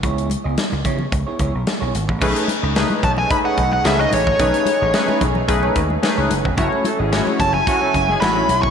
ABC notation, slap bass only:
X:1
M:4/4
L:1/16
Q:1/4=110
K:Bmix
V:1 name="Slap bass" clef=bass
C,,3 C,, z C,, C,2 C,, z C,, B,,, z B,,, G,,, A,,, | B,,, z2 C,,2 z B,,,2 z2 B,,,2 C,,2 A,,,2 | B,,, z2 A,,, z2 B,,,2 B,,,2 D,,2 z C,, F,,, E,,, | F,,, z2 G,,,2 z F,,,2 z2 F,,,2 A,,,2 B,,,2 |]